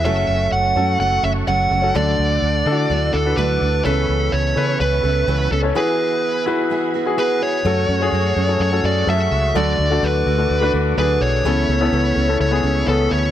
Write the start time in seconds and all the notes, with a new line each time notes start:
0.04 F#1 F#2 C#3 F#3 A3 C#4 F#4 A4 C#5 E5 F#5 C#6
0.28 F#1
0.52 F#1 F#5
0.76 F#2 F#3 A3 C#4 F#4 A4
0.99 F#1 F#3 A3 C#4 A4 F#5
1.23 F#1 F#3 A3 C#4 A4 E5
1.47 F#1 F#2 C#3 F#3 A3 C#4 A4 F#5
1.71 F#1 F#3 A3 C#4 A4
1.82 C#4 F#4 A4
1.94 D2 D3 F#3 A3 D4 F#4 A4 D5 D6
2.19 D2
2.42 D2
2.66 D3 A3 D4 E4 A4
2.72 F#4
2.90 D2 F#3 A3 D4 A4
3.13 D2 A3 D4 A4
3.25 D4 F#4 B4
3.37 D2 D3 F#3 A3 D4 A4 B4
3.61 D2 A3 D4 A4
3.84 C#2 C#3 E3 B3 C#4 A4 B4 C#5 E5 B5
4.09 C#2
4.32 C#2 C#5
4.56 C#3 B3 C#4 A4 B4
4.80 C#2 E3 B3 C#4 A4 B4
5.03 C#2 B3 C#4 A4
5.28 C#2 C#3 E3 B3 C#4 A4
5.51 C#2 B3 C#4 A4
5.62 C#4 A4 C#5
5.74 E3 B3 E4 F#4 G#4 B4 F#5
6.46 B3 E4 F#4 G#4 B4
6.70 E3 B3 F#4 G#4
6.94 B3 F#4 G#4
7.05 E4 F#4 G#4
7.18 E3 B3 F#4 G#4 B4
7.41 B3 F#4 G#4 C#5
7.65 F#2 C#3 F#3 A3 C#4 F#4 A4 C#5 F#5 C#6
7.89 F#2 F#3 A3 C#4 F#4
8.01 A3 C#4 F#4 G#4
8.12 F#2 F#3 A3 C#4 F#4
8.36 F#2 F#3 A3 C#4 F#4
8.47 A3 C#4 F#4 A4
8.60 F#2 C#5
8.72 A3 C#4 F#4 A4
8.84 F#2 F#3 A3 C#4 F#4 D5
9.07 F#2 F#3 A3 C#4 F#4 A4 E5
9.31 C#2
9.54 D2 D3 F#3 A3 D4 F#4 A4 D5 D6
9.79 D2 A3 D4 F#4
9.90 A3 D4 F#4 A4
10.03 D2 F#3 A3 D4 F#4 B4
10.26 D2 A3 D4 F#4
10.37 A3 D4 F#4 A4
10.50 D2
10.61 A3 D4 F#4 B4
10.74 D2 A3 D4 F#4
10.97 D2 F#3 A3 D4 F#4 G#4 B4
11.21 B1 C#5
11.44 C#2 C#3 E3 B3 C#4 E4 A4 C#5 E5 B5
11.68 C#2 B3 C#4 A4
11.81 B3 C#4 E4 A4
11.92 C#2 E3 B3 C#4 A4
12.15 C#2 B3 C#4 A4
12.28 B3 C#4 E4 A4
12.40 C#2 C#5
12.51 B3 C#4 E4 G#4
12.63 C#2 B3 C#4 A4
12.87 C#2 E3 B3 C#4 E4 A4
13.11 D2 C#5